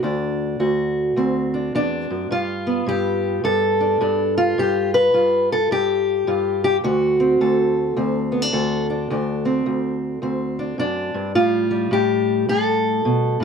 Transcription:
steel-string acoustic guitar
0.03 D2 D4
0.60 D2 F#4
1.16 D2 C4
1.54 D4
1.75 E2 D4
2.10 F#2
2.31 G2 F4
2.67 B3
2.87 G2 G4
3.44 G2 A4
3.81 D4
4.01 G2 D4
4.38 F4
4.58 G2 G4
4.94 B4
5.14 G2 F4
5.52 A4
5.71 G2 G4
6.27 G2 F4
6.64 G4
6.84 D2 F#4
7.20 C4
7.41 D2 A4
7.97 D2 C4
8.32 B3
8.42 D4
8.53 D2 A4
8.90 D4
9.10 D2 D4
9.45 C4
9.66 D2
10.22 D2 C4
10.59 D4
10.78 F#2 D4
11.14 G2
11.35 A2 G3 F4
11.71 G3
11.91 A2 G4
12.49 A2 A4
13.05 B2
13.40 A2

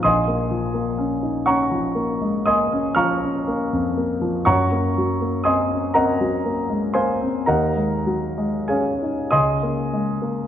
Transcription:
grand piano
0.03 A#1 D#5 G#5 C6 D#6
0.28 A#3
0.51 F3
0.74 A#3
0.98 C#4
1.23 D#4
1.46 C#4 C#5 F#5 A#5 C#6
1.71 F3
1.95 A#3
2.21 G#3
2.46 A#3 D#5 G#5 C6 D#6
2.72 C#4
2.95 F3 F5 A#5 C#6 F6
3.23 C#4
3.48 A#3
3.73 F2
3.98 A#3
4.21 F3
4.45 F#2 C#5 F#5 A#5 C#6
4.72 A#3
4.98 F#3
5.21 A#3
5.44 C4 D#5 G#5 C6 D#6
5.71 C#4
5.94 C4 A#4 D#5 F#5 A#5
6.21 F#3
6.46 A#3
6.70 G#3
6.94 A#3 C5 F5 G#5 C6
7.21 C4
7.46 D#2 A#4 D#5 F#5 A#5
7.75 G#3
8.07 F#3
8.38 G#3
8.68 C#4 G#4 C#5 F5 G#5
9.02 D#4
9.31 C#2 D#5 G#5 C6 D#6
9.63 A#3
9.93 G#3
10.22 A#3

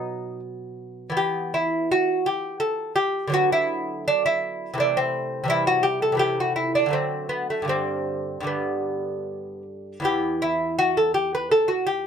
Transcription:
lute
Already playing: B2 F#3 B3 D#4
1.10 E3 B3
1.17 G4
1.54 E4
1.92 F#4
2.26 G4
2.60 A4
2.96 G4
3.27 D3 F#3
3.32 B3 F#4
3.52 E4
4.08 D4
4.26 E4
4.74 C3 E3
4.78 A3 D4
4.97 C4
5.44 C3 E3
5.48 G3 E4
5.67 F#4
5.83 G4
6.02 A4
6.12 C3 E3
6.17 A3 G4
6.40 F#4
6.56 E4
6.75 D4
6.86 D3 F#3
6.91 A3 C4
7.29 B3
7.50 A3
7.62 G2 D3
7.68 G3 C4
8.41 G2 D3 G3
8.47 B3
10.00 E2 E3
10.04 B3 G4
10.42 E4
10.79 F#4
10.97 A4
11.14 G4
11.35 B4
11.51 A4
11.68 F#4
11.87 G4

